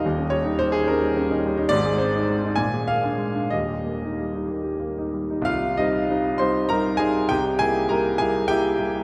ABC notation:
X:1
M:6/8
L:1/16
Q:3/8=67
K:Eb
V:1 name="Grand piano"
e2 _d2 c A B6 | d2 c4 a2 f4 | e6 z6 | [Ff]2 [Ee]4 [cc']2 [Bb]2 [Aa]2 |
[Gg]2 [Aa]2 [Bb]2 [Aa]2 [Gg]4 |]
V:2 name="Grand piano"
[E,,,E,,] _D G, E G, E D G, D E G, E | [A,,,A,,] A C E A, E B,, A B, D A, D | [E,,,E,,] G B, E G, E B, G B, E G, E | C,,2 [G,C]2 [G,CE]2 [G,CE]2 [G,CE]2 [G,CE]2 |
C,,2 [G,B,=E]2 [G,B,E]2 [G,B,E]2 [G,B,E]2 [G,B,E]2 |]